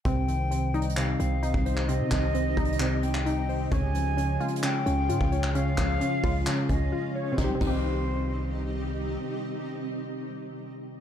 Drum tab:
CC |------------------------------------------------|------------------------------------------------|------------------------------------------------|------------------------------------------------|
HH |x-----x-----x-----x-x-x-------x-----x-----x-----|x-----x-----x-----x-x-x-x-----x-----x-----o-----|x-----x-----x-----x-x-x-------x-----x-----x-----|x-----x-----x-----o-----x-----x-----------------|
CP |------------------------x--------------------x--|------x-----------------x--------x--------------|------------------------x--------------------x--|------x-----------------x-----------------------|
SD |------------------------------------------------|------------------------------------------------|------------------------------------------------|------------------------------------------------|
BD |o--------------------------------------o--------|------o-----------o-----------------------------|o--------------------------------------o--------|------o-----------o-----------o-----------------|

CC |------x-----------------------------------------|------------------------------------------------|
HH |------------------------------------------------|------------------------------------------------|
CP |------------------------------------------------|------------------------------------------------|
SD |o-----------------------------------------------|------------------------------------------------|
BD |o-----o-----------------------------------------|------------------------------------------------|